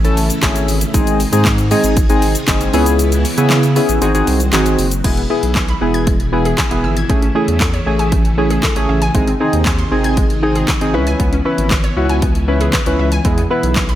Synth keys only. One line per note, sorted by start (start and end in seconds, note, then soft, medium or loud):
0.04 0.29 A3 medium
0.04 0.29 C#4 medium
0.04 0.29 E4 medium
0.04 0.29 A4 loud
0.43 0.76 A3 medium
0.43 0.76 C#4 medium
0.43 0.76 E4 medium
0.43 0.76 G#4 loud
0.94 1.19 G#3 medium
0.94 1.19 C4 medium
0.94 1.19 D#4 medium
0.94 1.19 G#4 loud
1.32 1.57 G#3 medium
1.32 1.57 C4 medium
1.32 1.57 D#4 medium
1.32 1.57 G#4 loud
1.71 1.96 G#3 medium
1.71 1.96 C4 medium
1.71 1.96 D#4 medium
1.71 1.96 G#4 loud
2.09 2.34 G#3 medium
2.09 2.34 C4 medium
2.09 2.34 D#4 medium
2.09 2.34 G#4 medium
2.48 2.74 G#3 medium
2.48 2.74 C4 medium
2.48 2.74 D#4 medium
2.48 2.73 G#4 loud
2.73 3.25 B3 medium
2.73 3.25 C#4 medium
2.73 3.25 E4 medium
2.73 3.25 G#4 loud
3.38 3.62 B3 medium
3.38 3.62 C#4 medium
3.38 3.63 E4 medium
3.38 3.63 G#4 loud
3.76 4.01 B3 medium
3.76 4.01 C#4 medium
3.76 4.01 E4 medium
3.76 4.01 G#4 loud
4.02 4.12 C4 medium
4.02 4.12 D#4 medium
4.02 4.12 F#4 medium
4.02 4.12 G#4 loud
4.14 4.39 C4 medium
4.14 4.39 D#4 medium
4.14 4.39 F#4 medium
4.14 4.39 G#4 loud
4.53 4.86 C4 medium
4.53 4.86 D#4 medium
4.53 4.86 F#4 medium
4.53 4.86 G#4 medium
5.04 5.21 B3 medium
5.04 5.21 E4 medium
5.04 5.21 G#4 medium
5.30 5.63 B3 medium
5.30 5.63 E4 medium
5.30 5.63 G#4 medium
5.81 6.14 B3 medium
5.81 6.14 E4 medium
5.81 6.14 G#4 medium
6.32 6.57 B3 medium
6.32 6.57 E4 medium
6.32 6.57 G#4 medium
6.71 6.96 B3 medium
6.71 6.96 E4 medium
6.71 6.96 G#4 medium
7.09 7.26 A3 medium
7.09 7.26 C#4 medium
7.09 7.26 G#4 medium
7.35 7.68 A3 medium
7.35 7.68 C#4 medium
7.35 7.68 G#4 medium
7.86 8.19 A3 medium
7.86 8.19 C#4 medium
7.86 8.20 G#4 medium
8.38 8.62 A3 medium
8.38 8.62 C#4 medium
8.38 8.63 G#4 medium
8.76 9.01 A3 medium
8.76 9.01 C#4 medium
8.76 9.01 G#4 loud
9.15 9.31 C4 medium
9.15 9.31 D#4 medium
9.15 9.31 G#4 medium
9.40 9.73 C4 medium
9.40 9.73 D#4 medium
9.40 9.73 G#4 medium
9.91 10.24 C4 medium
9.91 10.25 D#4 medium
9.91 10.25 G#4 medium
10.43 10.67 C4 medium
10.43 10.68 D#4 medium
10.43 10.68 G#4 medium
10.81 10.94 C4 medium
10.81 10.94 D#4 medium
10.81 10.94 G#4 loud
10.94 11.35 C#4 medium
10.94 11.35 E4 medium
10.94 11.35 B4 loud
11.45 11.78 C#4 medium
11.45 11.78 E4 medium
11.45 11.78 B4 medium
11.97 12.30 C#4 medium
11.97 12.30 E4 medium
11.97 12.30 F#4 medium
12.48 12.73 C#4 medium
12.48 12.73 E4 medium
12.48 12.73 B4 medium
12.86 13.11 C#4 medium
12.86 13.11 E4 medium
12.86 13.11 B4 medium
13.25 13.41 B3 medium
13.25 13.41 E4 medium
13.25 13.42 G#4 medium
13.50 13.83 B3 medium
13.50 13.84 E4 medium
13.50 13.84 B4 medium